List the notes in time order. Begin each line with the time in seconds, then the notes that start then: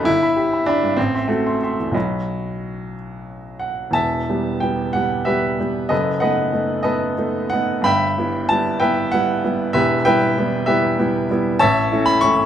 0.03 G1 E4
0.22 E5 B5
0.37 G4
0.53 E5 B5
0.66 D4 E5 B5
0.83 G2
0.97 A1 C4
1.15 E5 C6
1.28 A3 F#4
1.46 E5 C6
1.63 E5 C6
1.80 E2
1.92 B1 F#3 F#4 D#5 B5
3.60 F#5
3.91 E1 E2 E5 A5
4.29 G3 B3 G4
4.60 G3 B3 G4 G5
4.93 G3 B3 G4 F#5
5.25 G3 B3 G4 B4 E5
5.59 G3 B3 G4
5.89 F#1 F#2 A4 B4 D#5
6.20 A3 B3 D#4 B4 D#5 F#5
6.52 A3 B3 D#4
6.83 A3 B3 D#4 A4 B4 D#5
7.18 A3 B3 D#4
7.50 A3 B3 D#4 F#5
7.82 G1 G2 G5 B5
7.86 E5
8.18 G3 B3 E4
8.49 G3 B3 E4 A5
8.80 G3 B3 E4 B4 E5 G5
9.12 G3 B3 E4 F#5
9.44 G3 B3 E4
9.73 E1 E2 G4 B4 E5
10.05 G3 B3 E4 B4 E5 G5
10.38 G3 B3
10.66 G3 B3 E4 G4 B4 E5
10.99 G3 B3 E4
11.31 G3 B3 E4
11.59 A1 C#5 E5 A5
11.92 E3 A3 C#4
12.06 B5
12.21 E3 A3 C#4 C#6